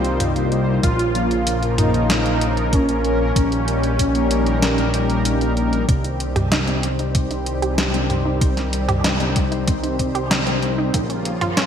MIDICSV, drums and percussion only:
0, 0, Header, 1, 2, 480
1, 0, Start_track
1, 0, Tempo, 631579
1, 635, Time_signature, 4, 2, 24, 8
1, 8863, End_track
2, 0, Start_track
2, 0, Title_t, "Drums"
2, 34, Note_on_c, 9, 42, 38
2, 110, Note_off_c, 9, 42, 0
2, 153, Note_on_c, 9, 42, 85
2, 153, Note_on_c, 9, 45, 62
2, 229, Note_off_c, 9, 42, 0
2, 229, Note_off_c, 9, 45, 0
2, 274, Note_on_c, 9, 42, 35
2, 350, Note_off_c, 9, 42, 0
2, 394, Note_on_c, 9, 42, 36
2, 470, Note_off_c, 9, 42, 0
2, 634, Note_on_c, 9, 36, 114
2, 634, Note_on_c, 9, 42, 84
2, 710, Note_off_c, 9, 36, 0
2, 710, Note_off_c, 9, 42, 0
2, 755, Note_on_c, 9, 42, 39
2, 831, Note_off_c, 9, 42, 0
2, 875, Note_on_c, 9, 42, 59
2, 951, Note_off_c, 9, 42, 0
2, 996, Note_on_c, 9, 42, 38
2, 1072, Note_off_c, 9, 42, 0
2, 1115, Note_on_c, 9, 42, 92
2, 1191, Note_off_c, 9, 42, 0
2, 1236, Note_on_c, 9, 42, 38
2, 1312, Note_off_c, 9, 42, 0
2, 1355, Note_on_c, 9, 42, 67
2, 1355, Note_on_c, 9, 45, 89
2, 1431, Note_off_c, 9, 42, 0
2, 1431, Note_off_c, 9, 45, 0
2, 1476, Note_on_c, 9, 42, 37
2, 1552, Note_off_c, 9, 42, 0
2, 1595, Note_on_c, 9, 38, 115
2, 1595, Note_on_c, 9, 42, 92
2, 1671, Note_off_c, 9, 38, 0
2, 1671, Note_off_c, 9, 42, 0
2, 1715, Note_on_c, 9, 42, 39
2, 1791, Note_off_c, 9, 42, 0
2, 1835, Note_on_c, 9, 42, 64
2, 1911, Note_off_c, 9, 42, 0
2, 1955, Note_on_c, 9, 42, 37
2, 2031, Note_off_c, 9, 42, 0
2, 2073, Note_on_c, 9, 42, 86
2, 2074, Note_on_c, 9, 36, 102
2, 2149, Note_off_c, 9, 42, 0
2, 2150, Note_off_c, 9, 36, 0
2, 2194, Note_on_c, 9, 42, 38
2, 2270, Note_off_c, 9, 42, 0
2, 2314, Note_on_c, 9, 42, 38
2, 2390, Note_off_c, 9, 42, 0
2, 2554, Note_on_c, 9, 36, 118
2, 2555, Note_on_c, 9, 42, 94
2, 2630, Note_off_c, 9, 36, 0
2, 2631, Note_off_c, 9, 42, 0
2, 2676, Note_on_c, 9, 42, 40
2, 2752, Note_off_c, 9, 42, 0
2, 2795, Note_on_c, 9, 42, 66
2, 2871, Note_off_c, 9, 42, 0
2, 2914, Note_on_c, 9, 42, 40
2, 2990, Note_off_c, 9, 42, 0
2, 3034, Note_on_c, 9, 36, 60
2, 3035, Note_on_c, 9, 42, 92
2, 3110, Note_off_c, 9, 36, 0
2, 3111, Note_off_c, 9, 42, 0
2, 3154, Note_on_c, 9, 42, 39
2, 3230, Note_off_c, 9, 42, 0
2, 3274, Note_on_c, 9, 42, 67
2, 3350, Note_off_c, 9, 42, 0
2, 3393, Note_on_c, 9, 42, 37
2, 3469, Note_off_c, 9, 42, 0
2, 3515, Note_on_c, 9, 38, 112
2, 3515, Note_on_c, 9, 42, 93
2, 3591, Note_off_c, 9, 38, 0
2, 3591, Note_off_c, 9, 42, 0
2, 3633, Note_on_c, 9, 42, 38
2, 3709, Note_off_c, 9, 42, 0
2, 3753, Note_on_c, 9, 42, 64
2, 3829, Note_off_c, 9, 42, 0
2, 3873, Note_on_c, 9, 42, 41
2, 3949, Note_off_c, 9, 42, 0
2, 3992, Note_on_c, 9, 42, 93
2, 4068, Note_off_c, 9, 42, 0
2, 4113, Note_on_c, 9, 42, 37
2, 4189, Note_off_c, 9, 42, 0
2, 4232, Note_on_c, 9, 42, 40
2, 4308, Note_off_c, 9, 42, 0
2, 4353, Note_on_c, 9, 42, 38
2, 4429, Note_off_c, 9, 42, 0
2, 4474, Note_on_c, 9, 36, 123
2, 4474, Note_on_c, 9, 42, 88
2, 4550, Note_off_c, 9, 36, 0
2, 4550, Note_off_c, 9, 42, 0
2, 4594, Note_on_c, 9, 42, 39
2, 4670, Note_off_c, 9, 42, 0
2, 4713, Note_on_c, 9, 42, 67
2, 4789, Note_off_c, 9, 42, 0
2, 4833, Note_on_c, 9, 42, 40
2, 4833, Note_on_c, 9, 45, 90
2, 4909, Note_off_c, 9, 42, 0
2, 4909, Note_off_c, 9, 45, 0
2, 4953, Note_on_c, 9, 38, 113
2, 4953, Note_on_c, 9, 42, 96
2, 5029, Note_off_c, 9, 38, 0
2, 5029, Note_off_c, 9, 42, 0
2, 5073, Note_on_c, 9, 42, 40
2, 5149, Note_off_c, 9, 42, 0
2, 5193, Note_on_c, 9, 42, 65
2, 5269, Note_off_c, 9, 42, 0
2, 5313, Note_on_c, 9, 42, 38
2, 5389, Note_off_c, 9, 42, 0
2, 5433, Note_on_c, 9, 42, 89
2, 5434, Note_on_c, 9, 36, 117
2, 5509, Note_off_c, 9, 42, 0
2, 5510, Note_off_c, 9, 36, 0
2, 5553, Note_on_c, 9, 42, 39
2, 5629, Note_off_c, 9, 42, 0
2, 5673, Note_on_c, 9, 42, 67
2, 5749, Note_off_c, 9, 42, 0
2, 5795, Note_on_c, 9, 42, 40
2, 5871, Note_off_c, 9, 42, 0
2, 5913, Note_on_c, 9, 38, 119
2, 5913, Note_on_c, 9, 42, 93
2, 5989, Note_off_c, 9, 38, 0
2, 5989, Note_off_c, 9, 42, 0
2, 6035, Note_on_c, 9, 42, 41
2, 6111, Note_off_c, 9, 42, 0
2, 6156, Note_on_c, 9, 42, 43
2, 6156, Note_on_c, 9, 45, 57
2, 6232, Note_off_c, 9, 42, 0
2, 6232, Note_off_c, 9, 45, 0
2, 6394, Note_on_c, 9, 36, 127
2, 6395, Note_on_c, 9, 42, 95
2, 6470, Note_off_c, 9, 36, 0
2, 6471, Note_off_c, 9, 42, 0
2, 6515, Note_on_c, 9, 38, 36
2, 6515, Note_on_c, 9, 42, 39
2, 6591, Note_off_c, 9, 38, 0
2, 6591, Note_off_c, 9, 42, 0
2, 6634, Note_on_c, 9, 42, 68
2, 6710, Note_off_c, 9, 42, 0
2, 6754, Note_on_c, 9, 42, 42
2, 6754, Note_on_c, 9, 45, 89
2, 6830, Note_off_c, 9, 42, 0
2, 6830, Note_off_c, 9, 45, 0
2, 6873, Note_on_c, 9, 38, 121
2, 6873, Note_on_c, 9, 42, 99
2, 6949, Note_off_c, 9, 38, 0
2, 6949, Note_off_c, 9, 42, 0
2, 6993, Note_on_c, 9, 42, 42
2, 7069, Note_off_c, 9, 42, 0
2, 7113, Note_on_c, 9, 42, 68
2, 7114, Note_on_c, 9, 36, 107
2, 7189, Note_off_c, 9, 42, 0
2, 7190, Note_off_c, 9, 36, 0
2, 7234, Note_on_c, 9, 42, 41
2, 7310, Note_off_c, 9, 42, 0
2, 7353, Note_on_c, 9, 42, 95
2, 7355, Note_on_c, 9, 36, 126
2, 7429, Note_off_c, 9, 42, 0
2, 7431, Note_off_c, 9, 36, 0
2, 7475, Note_on_c, 9, 42, 40
2, 7551, Note_off_c, 9, 42, 0
2, 7594, Note_on_c, 9, 36, 64
2, 7595, Note_on_c, 9, 42, 70
2, 7670, Note_off_c, 9, 36, 0
2, 7671, Note_off_c, 9, 42, 0
2, 7715, Note_on_c, 9, 42, 40
2, 7791, Note_off_c, 9, 42, 0
2, 7835, Note_on_c, 9, 38, 123
2, 7835, Note_on_c, 9, 42, 92
2, 7911, Note_off_c, 9, 38, 0
2, 7911, Note_off_c, 9, 42, 0
2, 7954, Note_on_c, 9, 42, 41
2, 8030, Note_off_c, 9, 42, 0
2, 8075, Note_on_c, 9, 42, 41
2, 8151, Note_off_c, 9, 42, 0
2, 8314, Note_on_c, 9, 36, 127
2, 8314, Note_on_c, 9, 42, 92
2, 8390, Note_off_c, 9, 36, 0
2, 8390, Note_off_c, 9, 42, 0
2, 8435, Note_on_c, 9, 42, 40
2, 8511, Note_off_c, 9, 42, 0
2, 8553, Note_on_c, 9, 42, 65
2, 8629, Note_off_c, 9, 42, 0
2, 8674, Note_on_c, 9, 42, 40
2, 8674, Note_on_c, 9, 45, 89
2, 8750, Note_off_c, 9, 42, 0
2, 8750, Note_off_c, 9, 45, 0
2, 8794, Note_on_c, 9, 38, 126
2, 8794, Note_on_c, 9, 42, 100
2, 8863, Note_off_c, 9, 38, 0
2, 8863, Note_off_c, 9, 42, 0
2, 8863, End_track
0, 0, End_of_file